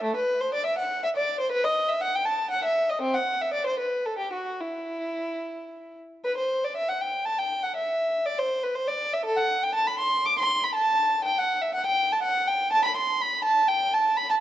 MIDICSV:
0, 0, Header, 1, 2, 480
1, 0, Start_track
1, 0, Key_signature, 1, "minor"
1, 0, Tempo, 496689
1, 43, Time_signature, 3, 2, 24, 8
1, 2444, Tempo, 517688
1, 3884, Tempo, 542495
1, 5804, Tempo, 504626
1, 7724, Tempo, 495050
1, 11084, Tempo, 485830
1, 13719, End_track
2, 0, Start_track
2, 0, Title_t, "Violin"
2, 0, Program_c, 0, 40
2, 33, Note_on_c, 0, 57, 77
2, 155, Note_off_c, 0, 57, 0
2, 161, Note_on_c, 0, 71, 69
2, 396, Note_off_c, 0, 71, 0
2, 398, Note_on_c, 0, 72, 71
2, 520, Note_off_c, 0, 72, 0
2, 522, Note_on_c, 0, 74, 85
2, 639, Note_on_c, 0, 76, 74
2, 640, Note_off_c, 0, 74, 0
2, 758, Note_on_c, 0, 78, 66
2, 759, Note_off_c, 0, 76, 0
2, 998, Note_off_c, 0, 78, 0
2, 1005, Note_on_c, 0, 76, 74
2, 1053, Note_off_c, 0, 76, 0
2, 1126, Note_on_c, 0, 74, 72
2, 1356, Note_on_c, 0, 72, 65
2, 1362, Note_off_c, 0, 74, 0
2, 1468, Note_on_c, 0, 71, 81
2, 1479, Note_off_c, 0, 72, 0
2, 1588, Note_on_c, 0, 75, 71
2, 1595, Note_off_c, 0, 71, 0
2, 1826, Note_on_c, 0, 76, 70
2, 1834, Note_off_c, 0, 75, 0
2, 1944, Note_on_c, 0, 78, 80
2, 1954, Note_off_c, 0, 76, 0
2, 2073, Note_off_c, 0, 78, 0
2, 2080, Note_on_c, 0, 79, 76
2, 2180, Note_on_c, 0, 81, 69
2, 2202, Note_off_c, 0, 79, 0
2, 2423, Note_on_c, 0, 78, 72
2, 2433, Note_off_c, 0, 81, 0
2, 2549, Note_off_c, 0, 78, 0
2, 2553, Note_on_c, 0, 76, 75
2, 2782, Note_on_c, 0, 75, 67
2, 2793, Note_off_c, 0, 76, 0
2, 2898, Note_on_c, 0, 60, 76
2, 2915, Note_off_c, 0, 75, 0
2, 3016, Note_on_c, 0, 78, 69
2, 3030, Note_off_c, 0, 60, 0
2, 3267, Note_on_c, 0, 76, 68
2, 3268, Note_off_c, 0, 78, 0
2, 3379, Note_on_c, 0, 74, 73
2, 3393, Note_off_c, 0, 76, 0
2, 3499, Note_on_c, 0, 72, 61
2, 3507, Note_off_c, 0, 74, 0
2, 3616, Note_on_c, 0, 71, 57
2, 3628, Note_off_c, 0, 72, 0
2, 3865, Note_on_c, 0, 69, 57
2, 3867, Note_off_c, 0, 71, 0
2, 3976, Note_on_c, 0, 67, 57
2, 3992, Note_off_c, 0, 69, 0
2, 4104, Note_off_c, 0, 67, 0
2, 4106, Note_on_c, 0, 66, 53
2, 4348, Note_off_c, 0, 66, 0
2, 4348, Note_on_c, 0, 64, 52
2, 5563, Note_off_c, 0, 64, 0
2, 5798, Note_on_c, 0, 71, 74
2, 5914, Note_off_c, 0, 71, 0
2, 5925, Note_on_c, 0, 72, 63
2, 6161, Note_off_c, 0, 72, 0
2, 6178, Note_on_c, 0, 74, 61
2, 6291, Note_on_c, 0, 76, 68
2, 6292, Note_off_c, 0, 74, 0
2, 6406, Note_off_c, 0, 76, 0
2, 6407, Note_on_c, 0, 78, 65
2, 6526, Note_off_c, 0, 78, 0
2, 6526, Note_on_c, 0, 79, 64
2, 6756, Note_on_c, 0, 81, 77
2, 6765, Note_off_c, 0, 79, 0
2, 6880, Note_off_c, 0, 81, 0
2, 6883, Note_on_c, 0, 79, 76
2, 7117, Note_on_c, 0, 78, 69
2, 7123, Note_off_c, 0, 79, 0
2, 7239, Note_on_c, 0, 76, 72
2, 7241, Note_off_c, 0, 78, 0
2, 7713, Note_off_c, 0, 76, 0
2, 7713, Note_on_c, 0, 74, 78
2, 7838, Note_off_c, 0, 74, 0
2, 7838, Note_on_c, 0, 72, 72
2, 8075, Note_on_c, 0, 71, 64
2, 8078, Note_off_c, 0, 72, 0
2, 8195, Note_on_c, 0, 72, 69
2, 8197, Note_off_c, 0, 71, 0
2, 8310, Note_on_c, 0, 74, 75
2, 8317, Note_off_c, 0, 72, 0
2, 8556, Note_off_c, 0, 74, 0
2, 8564, Note_on_c, 0, 76, 68
2, 8676, Note_on_c, 0, 69, 77
2, 8683, Note_off_c, 0, 76, 0
2, 8789, Note_on_c, 0, 78, 76
2, 8797, Note_off_c, 0, 69, 0
2, 9036, Note_off_c, 0, 78, 0
2, 9043, Note_on_c, 0, 79, 76
2, 9156, Note_on_c, 0, 81, 82
2, 9163, Note_off_c, 0, 79, 0
2, 9273, Note_on_c, 0, 83, 76
2, 9276, Note_off_c, 0, 81, 0
2, 9396, Note_on_c, 0, 84, 77
2, 9398, Note_off_c, 0, 83, 0
2, 9635, Note_off_c, 0, 84, 0
2, 9651, Note_on_c, 0, 86, 89
2, 9768, Note_off_c, 0, 86, 0
2, 9780, Note_on_c, 0, 84, 85
2, 10008, Note_off_c, 0, 84, 0
2, 10019, Note_on_c, 0, 83, 71
2, 10131, Note_on_c, 0, 81, 83
2, 10132, Note_off_c, 0, 83, 0
2, 10599, Note_off_c, 0, 81, 0
2, 10607, Note_on_c, 0, 79, 84
2, 10725, Note_off_c, 0, 79, 0
2, 10741, Note_on_c, 0, 78, 83
2, 10969, Note_on_c, 0, 76, 74
2, 10974, Note_off_c, 0, 78, 0
2, 11087, Note_off_c, 0, 76, 0
2, 11094, Note_on_c, 0, 78, 87
2, 11207, Note_off_c, 0, 78, 0
2, 11210, Note_on_c, 0, 79, 84
2, 11443, Note_off_c, 0, 79, 0
2, 11465, Note_on_c, 0, 81, 81
2, 11569, Note_on_c, 0, 78, 82
2, 11575, Note_off_c, 0, 81, 0
2, 11803, Note_off_c, 0, 78, 0
2, 11816, Note_on_c, 0, 79, 78
2, 12052, Note_off_c, 0, 79, 0
2, 12059, Note_on_c, 0, 81, 92
2, 12172, Note_off_c, 0, 81, 0
2, 12182, Note_on_c, 0, 83, 85
2, 12294, Note_off_c, 0, 83, 0
2, 12302, Note_on_c, 0, 84, 79
2, 12532, Note_off_c, 0, 84, 0
2, 12545, Note_on_c, 0, 83, 82
2, 12776, Note_on_c, 0, 81, 85
2, 12777, Note_off_c, 0, 83, 0
2, 13008, Note_off_c, 0, 81, 0
2, 13009, Note_on_c, 0, 79, 86
2, 13249, Note_off_c, 0, 79, 0
2, 13258, Note_on_c, 0, 81, 83
2, 13490, Note_on_c, 0, 83, 93
2, 13491, Note_off_c, 0, 81, 0
2, 13608, Note_off_c, 0, 83, 0
2, 13622, Note_on_c, 0, 81, 83
2, 13667, Note_off_c, 0, 81, 0
2, 13719, End_track
0, 0, End_of_file